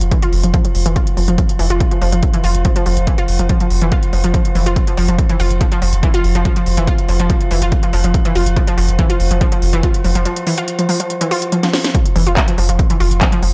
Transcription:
Already playing: F3 F4
0.01 F1, closed hi-hat
0.11 E3, kick, closed hi-hat
0.22 F4, closed hi-hat
0.33 F1, open hi-hat
0.44 F1 F3, closed hi-hat
0.54 F3, kick, closed hi-hat
0.65 F3, closed hi-hat
0.75 F1, open hi-hat
0.86 F1 E3, closed hi-hat
0.96 F4, kick, closed hi-hat
1.07 closed hi-hat
1.17 F1 F3, open hi-hat
1.28 F1 F3, closed hi-hat
1.38 F3, kick, closed hi-hat
1.49 closed hi-hat
1.59 F1 E3, open hi-hat
1.70 F1 F4, closed hi-hat
1.80 kick, closed hi-hat
1.91 F3, closed hi-hat
2.01 F1 F3, open hi-hat
2.12 F1 F3, closed hi-hat
2.23 kick, closed hi-hat
2.34 E3, closed hi-hat
2.44 F1 F4, open hi-hat
2.55 F1, closed hi-hat
2.65 F3, kick, closed hi-hat
2.76 F3, closed hi-hat
2.86 F1 F3, open hi-hat
2.97 F1, closed hi-hat
3.07 E3, kick, closed hi-hat
3.18 F4, closed hi-hat
3.28 F1, open hi-hat
3.39 F1 F3, closed hi-hat
3.49 F3, kick, closed hi-hat
3.60 F3, closed hi-hat
3.70 F1, open hi-hat
3.82 F1 E3, closed hi-hat
3.92 F4, kick, closed hi-hat
4.03 closed hi-hat
4.13 F1 F3, open hi-hat
4.24 F1 F3, closed hi-hat
4.34 F3, kick, closed hi-hat
4.45 closed hi-hat
4.55 F1 E3, open hi-hat
4.66 F1 F4, closed hi-hat
4.76 kick, closed hi-hat
4.87 F3, closed hi-hat
4.97 F1 F3, open hi-hat
5.08 F1 F3, closed hi-hat
5.19 kick, closed hi-hat
5.29 E3, closed hi-hat
5.40 F1 F4, open hi-hat
5.51 F1, closed hi-hat
5.61 F3, kick, closed hi-hat
5.72 F3, closed hi-hat
5.82 F1 F3, open hi-hat
5.93 F1, closed hi-hat
6.03 E3, kick, closed hi-hat
6.14 F4, closed hi-hat
6.24 F1, open hi-hat
6.35 F1 F3, closed hi-hat
6.45 F3, kick, closed hi-hat
6.56 F3, closed hi-hat
6.66 F1, open hi-hat
6.77 F1 E3, closed hi-hat
6.87 F4, kick, closed hi-hat
6.98 closed hi-hat
7.09 F1 F3, open hi-hat
7.20 F1 F3, closed hi-hat
7.30 F3, kick, closed hi-hat
7.41 closed hi-hat
7.51 F1 E3, open hi-hat
7.62 F1 F4, closed hi-hat
7.72 kick, closed hi-hat
7.83 F3, closed hi-hat
7.93 F1 F3, open hi-hat
8.04 F1 F3, closed hi-hat
8.14 kick, closed hi-hat
8.25 E3, closed hi-hat
8.35 F1 F4, open hi-hat
8.46 F1, closed hi-hat
8.56 F3, kick, closed hi-hat
8.67 F3, closed hi-hat
8.78 F1 F3, open hi-hat
8.89 F1, closed hi-hat
8.99 E3, kick, closed hi-hat
9.10 F4, closed hi-hat
9.20 F1, open hi-hat
9.31 F1 F3, closed hi-hat
9.41 F3, kick, closed hi-hat
9.52 F3, closed hi-hat
9.62 F1, open hi-hat
9.73 F1 E3, closed hi-hat
9.83 F4, kick, closed hi-hat
9.94 closed hi-hat
10.04 F1 F3, open hi-hat
10.15 F1 F3, closed hi-hat
10.25 F3, closed hi-hat
10.36 closed hi-hat
10.47 E3, open hi-hat
10.58 F4, closed hi-hat
10.68 closed hi-hat
10.79 F3, closed hi-hat
10.89 F3, open hi-hat
11.00 F3, closed hi-hat
11.10 closed hi-hat
11.21 E3, closed hi-hat
11.31 F4, open hi-hat
11.42 closed hi-hat
11.52 F3, closed hi-hat
11.63 F3, snare, closed hi-hat
11.73 F3, snare, open hi-hat
11.84 snare, closed hi-hat
11.95 F3 F4, kick, closed hi-hat
12.06 closed hi-hat
12.16 F1 E3, open hi-hat
12.27 F1 F4, closed hi-hat
12.37 kick, clap, closed hi-hat
12.48 F3, closed hi-hat
12.58 F1 F3, open hi-hat
12.69 F1 F3, closed hi-hat
12.79 kick, closed hi-hat
12.90 E3, closed hi-hat
13.00 F1 F4, open hi-hat
13.11 F1, closed hi-hat
13.21 F3, kick, clap, closed hi-hat
13.32 F3, closed hi-hat
13.42 F1 F3, open hi-hat

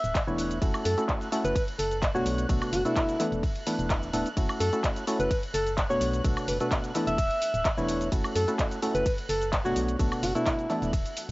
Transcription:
Already playing: E5 F#6
0.04 D1, closed hi-hat, cabasa
0.15 kick, clap, closed hi-hat, ride, cabasa
0.27 E1 E3 A3 B3 D4 E4 C#5, cabasa
0.39 open hi-hat, cabasa
0.51 closed hi-hat, cabasa
0.62 F#1 A3 C#4 E4 F#4 A4, kick, closed hi-hat, ride, cabasa
0.74 cabasa, high woodblock
0.85 F#2 A4, open hi-hat, cabasa
0.98 A3 C#4 E4 F#4 A4, closed hi-hat, cabasa
1.09 kick, clap, closed hi-hat, ride, cabasa
1.21 closed hi-hat, cabasa
1.32 A3 C#4 E4 F#4 A4, open hi-hat, cabasa
1.45 F#1 B4, closed hi-hat, cabasa
1.56 kick, closed hi-hat, ride, cabasa
1.68 closed hi-hat
1.79 F#1 A4, open hi-hat, cabasa
1.92 closed hi-hat, cabasa
2.02 kick, clap, closed hi-hat, ride, cabasa
2.15 B2 A3 B3 D4 F#4 C#5, cabasa
2.26 B1, open hi-hat, cabasa
2.38 closed hi-hat, cabasa
2.49 B1 B2 A3 B3 D4 F#4 A4, kick, closed hi-hat, ride, cabasa
2.62 cabasa, high woodblock
2.73 F#1 F#4, open hi-hat, cabasa
2.85 B2 A3 B3 D4 E4 F#4 A4, closed hi-hat, cabasa
2.96 kick, clap, closed hi-hat, ride, cabasa
3.09 closed hi-hat, cabasa
3.20 E3 A3 B3 D4 E4 A4, clap, open hi-hat, cabasa
3.32 E1, closed hi-hat, cabasa
3.43 kick, closed hi-hat, ride, cabasa
3.56 closed hi-hat
3.67 E3 A3 B3 D4 E4 A4, open hi-hat, cabasa
3.79 E1, closed hi-hat, cabasa
3.90 kick, clap, closed hi-hat, ride, cabasa
4.03 cabasa
4.13 D1 A3 B3 D4 E4 A4, open hi-hat, cabasa
4.26 closed hi-hat, cabasa
4.37 F#1 A3 C#4 E4 F#4 A4, kick, closed hi-hat, ride, cabasa
4.49 cabasa, high woodblock
4.60 F#2 A4, open hi-hat, cabasa
4.73 A3 C#4 E4 F#4 A4, closed hi-hat, cabasa
4.84 kick, clap, closed hi-hat, ride, cabasa
4.96 closed hi-hat, cabasa
5.07 A3 C#4 E4 F#4 A4, open hi-hat, cabasa
5.20 F#1 B4, closed hi-hat, cabasa
5.31 kick, closed hi-hat, ride, cabasa
5.43 closed hi-hat
5.54 F#1 A4, open hi-hat, cabasa
5.67 closed hi-hat, cabasa
5.78 kick, clap, closed hi-hat, ride, cabasa
5.90 B2 A3 B3 D4 F#4 C#5, cabasa
6.01 B1, open hi-hat, cabasa
6.13 closed hi-hat, cabasa
6.24 B1 B2 A3 B3 D4 F#4 A4, kick, closed hi-hat, ride, cabasa
6.37 cabasa, high woodblock
6.48 F#1 B4, open hi-hat, cabasa
6.60 B2 A3 B3 D4 F#4 A4 B4, closed hi-hat, cabasa
6.71 kick, clap, closed hi-hat, ride, cabasa
6.84 closed hi-hat, cabasa
6.95 E3 A3 B3 D4 E4 A4, clap, open hi-hat, cabasa
7.07 E1 E5, closed hi-hat, cabasa
7.18 D1, kick, closed hi-hat, ride, cabasa
7.31 closed hi-hat
7.42 open hi-hat, cabasa
7.54 D1, closed hi-hat, cabasa
7.65 kick, clap, closed hi-hat, ride, cabasa
7.77 E1 E3 A3 B3 D4 E4 C#5, cabasa
7.89 open hi-hat, cabasa
8.01 closed hi-hat, cabasa
8.12 F#1 A3 C#4 E4 F#4 A4, kick, closed hi-hat, ride, cabasa
8.24 cabasa, high woodblock
8.35 F#2 A4, open hi-hat, cabasa
8.48 A3 C#4 E4 F#4 A4, closed hi-hat, cabasa
8.59 kick, clap, closed hi-hat, ride, cabasa
8.71 closed hi-hat, cabasa
8.82 A3 C#4 E4 F#4 A4, open hi-hat, cabasa
8.95 F#1 B4, closed hi-hat, cabasa
9.06 kick, closed hi-hat, ride, cabasa
9.18 closed hi-hat
9.29 F#1 A4, open hi-hat, cabasa
9.42 closed hi-hat, cabasa
9.53 kick, clap, closed hi-hat, ride, cabasa
9.65 B2 A3 B3 D4 F#4 C#5, cabasa
9.76 B1, open hi-hat, cabasa
9.88 closed hi-hat, cabasa
9.99 B1 B2 A3 B3 D4 F#4 A4, kick, closed hi-hat, ride, cabasa
10.12 cabasa, high woodblock
10.23 F#1 F#4, open hi-hat, cabasa
10.35 B2 A3 B3 D4 E4 F#4 A4, closed hi-hat, cabasa
10.46 kick, clap, closed hi-hat, ride, cabasa
10.59 closed hi-hat, cabasa
10.70 E3 A3 B3 D4 E4 A4, clap, open hi-hat, cabasa
10.82 E1, closed hi-hat, cabasa
10.93 D1, kick, closed hi-hat, ride, cabasa
11.06 closed hi-hat, cabasa
11.17 open hi-hat, cabasa

